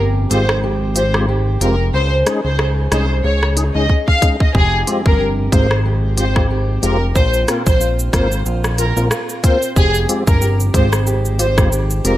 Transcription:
Already playing: analog synth bass G1, steel-string acoustic guitar F2 C4
0.00 steel-string acoustic guitar G4
0.30 analog synth bass G#1, tonewheel organ G#3 C4 F4 G4, steel-string acoustic guitar G#3, violin section C5, closed hi-hat
0.49 cross-stick
0.63 steel-string acoustic guitar G4
0.96 steel-string acoustic guitar C4, tonewheel organ F4 G4, violin section C5, closed hi-hat
1.14 tonewheel organ G#3 C4 F4 G4, cross-stick
1.28 steel-string acoustic guitar G4
1.61 analog synth bass F1, tonewheel organ G#3 C4 F4 G4, steel-string acoustic guitar C4, violin section A#4, closed hi-hat
1.94 analog synth bass C#2, steel-string acoustic guitar G#4, violin section C5
2.26 tonewheel organ G#3 C#4 D#4 G#4, steel-string acoustic guitar D#4, cross-stick, closed hi-hat
2.45 analog synth bass C#2, violin section C5
2.59 steel-string acoustic guitar G#4, cross-stick
2.91 analog synth bass C2, tonewheel organ G#3 C#4 D#4 G#4, steel-string acoustic guitar C#4, violin section C5, cross-stick, closed hi-hat
3.24 analog synth bass C#2, steel-string acoustic guitar G#4, violin section C#5
3.43 cross-stick
3.57 tonewheel organ D#4 G#4, steel-string acoustic guitar D#4, closed hi-hat
3.75 analog synth bass C#2, tonewheel organ G#3 C#4 D#4 G#4, violin section D#5
3.90 steel-string acoustic guitar G#4, kick
4.08 violin section F5, kick
4.22 tonewheel organ G#3 C#4 D#4 G#4, steel-string acoustic guitar D#4, kick, closed hi-hat
4.40 violin section D#5, kick
4.55 analog synth bass F1, steel-string acoustic guitar F2 G4, violin section G#4, kick
4.87 tonewheel organ G#3 C4 F4 G4, steel-string acoustic guitar C4, closed hi-hat
5.06 analog synth bass G1, violin section A#4, kick
5.20 steel-string acoustic guitar G4
5.52 analog synth bass G#1, tonewheel organ G#3 C4 F4 A#4, steel-string acoustic guitar G#3, violin section C5, kick, closed hi-hat
5.71 cross-stick
5.85 steel-string acoustic guitar G4
6.17 steel-string acoustic guitar C4, tonewheel organ F4 G4, violin section C5, closed hi-hat
6.36 tonewheel organ G#3 C4 F4 G4, kick, cross-stick
6.50 steel-string acoustic guitar G4
6.83 analog synth bass F1, tonewheel organ G#3 C4 F4 G4, steel-string acoustic guitar C4, violin section A#4, closed hi-hat
7.16 analog synth bass A#1, steel-string acoustic guitar A#2 F4, violin section C5, kick, shaker
7.34 shaker
7.48 tonewheel organ A#3 C4 F4 A#4, steel-string acoustic guitar C4, cross-stick, closed hi-hat, shaker
7.66 analog synth bass A#1, violin section C5, kick, shaker
7.81 steel-string acoustic guitar F4, shaker
7.99 shaker
8.13 analog synth bass G#1, tonewheel organ A#3 C4 F4 A#4, steel-string acoustic guitar A#3, violin section C5, kick, cross-stick, closed hi-hat, shaker
8.32 shaker
8.46 analog synth bass A#1, steel-string acoustic guitar F4, shaker
8.64 cross-stick, shaker
8.78 steel-string acoustic guitar C4, tonewheel organ F4 A#4, violin section A#4, closed hi-hat, shaker
8.97 analog synth bass A#1, tonewheel organ A#3 C4 F4 A#4, shaker
9.11 steel-string acoustic guitar F4, cross-stick, shaker
9.29 shaker
9.43 tonewheel organ A#3 C4 F4 A#4, steel-string acoustic guitar C4, violin section C5, kick, closed hi-hat, shaker
9.62 shaker
9.76 analog synth bass F1, steel-string acoustic guitar F2 G4, violin section G#4, kick, shaker
9.95 shaker
10.09 tonewheel organ G#3 C4 F4 G4, steel-string acoustic guitar C4, closed hi-hat, shaker
10.27 analog synth bass G1, violin section A#4, kick, shaker
10.42 steel-string acoustic guitar G4, shaker
10.60 shaker
10.74 analog synth bass G#1, tonewheel organ G#3 C4 F4 G4, steel-string acoustic guitar G#3, violin section C5, kick, closed hi-hat, shaker
10.93 cross-stick, shaker
11.07 steel-string acoustic guitar G4, shaker
11.25 shaker
11.39 steel-string acoustic guitar C4, tonewheel organ F4 G4, violin section C5, closed hi-hat, shaker
11.58 tonewheel organ G#3 C4 F4 G4, kick, cross-stick, shaker
11.72 steel-string acoustic guitar G4, shaker
11.90 shaker
12.04 analog synth bass F1, tonewheel organ G#3 C4 F4 G4, steel-string acoustic guitar C4, violin section A#4, closed hi-hat, shaker

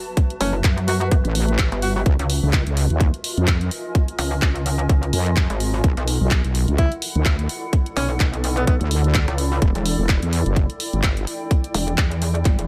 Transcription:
Already playing: ambient pad F#4 B4 E5 A5, impact
0.17 kick, closed hi-hat
0.30 closed hi-hat
0.41 wobble bass F#1, alto saxophone C#4, open hi-hat
0.64 wobble bass F#2, kick, clap, closed hi-hat
0.78 closed hi-hat
0.88 alto saxophone F#4, open hi-hat
1.01 alto saxophone F#4, closed hi-hat
1.11 wobble bass F#2, kick, closed hi-hat
1.25 wobble bass A1, closed hi-hat
1.35 open hi-hat
1.48 closed hi-hat
1.59 kick, clap, closed hi-hat
1.72 wobble bass G1, closed hi-hat
1.82 alto saxophone F#4, open hi-hat
1.96 alto saxophone F#4
2.06 wobble bass C#2, ambient pad F4, kick, closed hi-hat
2.19 wobble bass C#2, closed hi-hat
2.30 open hi-hat
2.37 ambient pad A#4
2.43 wobble bass C#2, ambient pad D#5
2.53 kick, clap, closed hi-hat
2.67 wobble bass C#2, closed hi-hat
2.77 open hi-hat
2.90 wobble bass D#2, closed hi-hat
3.00 kick, closed hi-hat
3.14 ambient pad G#5, closed hi-hat
3.24 open hi-hat
3.37 wobble bass F2, closed hi-hat
3.48 kick, clap, closed hi-hat
3.61 closed hi-hat
3.71 open hi-hat
3.95 kick, closed hi-hat
4.08 closed hi-hat
4.19 wobble bass C#2, open hi-hat
4.42 wobble bass C#2, kick, clap, closed hi-hat
4.56 closed hi-hat
4.66 open hi-hat
4.79 closed hi-hat
4.89 wobble bass C#2, kick, closed hi-hat
5.03 closed hi-hat
5.13 wobble bass F2, open hi-hat
5.26 closed hi-hat
5.37 kick, clap, closed hi-hat
5.50 wobble bass G#1, closed hi-hat
5.60 open hi-hat
5.84 wobble bass B1, ambient pad E4, kick, closed hi-hat
5.97 wobble bass B1, closed hi-hat
6.05 ambient pad F#5, open hi-hat
6.21 wobble bass B1
6.31 ambient pad A4, kick, clap, closed hi-hat
6.44 wobble bass B1, closed hi-hat
6.55 open hi-hat
6.64 ambient pad D5
6.68 wobble bass C#2, closed hi-hat
6.78 alto saxophone E4, kick, closed hi-hat
6.92 closed hi-hat
7.02 open hi-hat
7.15 wobble bass D2, closed hi-hat
7.26 kick, clap, closed hi-hat
7.39 closed hi-hat
7.49 open hi-hat
7.73 kick, closed hi-hat
7.86 closed hi-hat
7.96 wobble bass B1, alto saxophone C#4, open hi-hat
8.20 wobble bass B1, kick, clap, closed hi-hat
8.34 closed hi-hat
8.44 open hi-hat
8.57 alto saxophone B3, closed hi-hat
8.67 wobble bass B1, alto saxophone B3, kick, closed hi-hat
8.81 wobble bass D2, closed hi-hat
8.91 open hi-hat
9.04 closed hi-hat
9.14 kick, clap, closed hi-hat
9.28 wobble bass C#2, closed hi-hat
9.38 open hi-hat
9.62 wobble bass E1, kick, closed hi-hat
9.75 wobble bass E1, closed hi-hat
9.86 open hi-hat
9.99 wobble bass E1
10.09 kick, clap, closed hi-hat
10.22 wobble bass E2, ambient pad G5, closed hi-hat
10.33 open hi-hat
10.46 wobble bass F#1, closed hi-hat
10.56 kick, closed hi-hat
10.70 closed hi-hat
10.80 open hi-hat
10.93 wobble bass G1, closed hi-hat
11.03 kick, clap, closed hi-hat
11.17 closed hi-hat
11.27 open hi-hat
11.51 kick, closed hi-hat
11.64 closed hi-hat
11.74 wobble bass E1, open hi-hat
11.88 closed hi-hat
11.98 wobble bass E2, kick, clap, closed hi-hat
12.11 closed hi-hat
12.22 open hi-hat
12.35 closed hi-hat
12.45 wobble bass G1, kick, clap, closed hi-hat
12.59 wobble bass E1, closed hi-hat

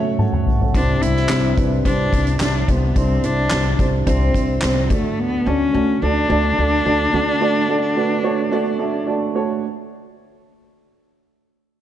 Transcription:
Already playing: upright piano A3 C#4 F#4 A4 C#5 E5
0.19 upright piano F#5 A5, mid tom
0.33 upright piano F#5, mid tom
0.47 floor tom
0.61 upright piano A4 C#5, floor tom
0.73 upright bass C2, french horn section C3 C4, upright piano C3 C4 D4 E4 G4 C5, cello D4, kick, closed hi-hat
1.02 upright bass C2, upright piano C4 D4 E4 G4 C5, cello E4, closed hi-hat
1.16 snare
1.29 upright bass C2, upright piano C4 D4 E4 G4 C5, snare, clap, closed hi-hat
1.31 clap
1.57 upright piano C4 D4 E4 G4 B4, kick, closed hi-hat
1.85 upright bass C2, upright piano C4 D4 E4 G4 C5, cello D4, kick, closed hi-hat
2.12 upright bass C2, upright piano C4 D4 E4 C5, kick, closed hi-hat
2.27 closed hi-hat
2.40 upright bass C2, upright piano C4 D4 E4 G4 C5, cello D4, snare, clap, closed hi-hat
2.68 upright bass C2, cello B3, upright piano C4 D4 E4 G4 C5, kick, closed hi-hat
2.96 upright bass C2, upright piano C3 C4 D4 E4 G4 C5, cello C4, kick, closed hi-hat
3.23 upright bass C2, upright piano C4 D4 E4 G4 C5, cello D4, closed hi-hat
3.50 upright bass C2, upright piano C4 D4 E4 G4 C5, snare, clap, closed hi-hat
3.79 upright bass C2, upright piano C4 D4 E4 G4 C5, kick, closed hi-hat
4.06 upright bass C2, upright piano C4 D4 E4 G4 C5, cello C4, kick, closed hi-hat
4.34 upright bass C2, upright piano C4 D4 E4 G4 C5, kick, closed hi-hat
4.61 upright bass C2, upright piano C4 D4 E4 G4 C5, cello C4, snare, clap, closed hi-hat
4.90 upright bass D2, upright piano D3 A3 D4 F#4 A4 D5, cello A3, kick, closed hi-hat
5.19 cello B3
5.45 upright bass D2, upright piano A3 D4 F#4 A4 D5, cello C#4
5.73 upright bass D2, upright piano A3 D4 F#4 A4 D5
6.02 upright bass D2, upright piano A3 D4 F#4 A4 D5, cello D4
6.29 upright bass D2, upright piano A3 D4 F#4 A4 D5
6.57 upright bass D2, upright piano A3 D4 F#4 A4 D5
6.85 upright bass D2, upright piano A3 D4 F#4 A4 D5
7.13 upright bass D2, upright piano D3 A3 D4 F#4 A4 D5
7.40 upright piano A3 D4 F#4 A4 D5
7.68 upright piano A3 D4 F#4 A4 D5
7.96 upright piano A3 D4 F#4 A4 B4
8.23 upright piano A3 D4 F#4 A4 C#5
8.51 upright piano A3 D4 F#4 A4 D5
8.78 upright piano A3 D4 F#4 A4 E5
9.06 upright piano A3 D4 F#4 A4 D5
9.34 upright piano A3 D4 F#4 A4 C#5

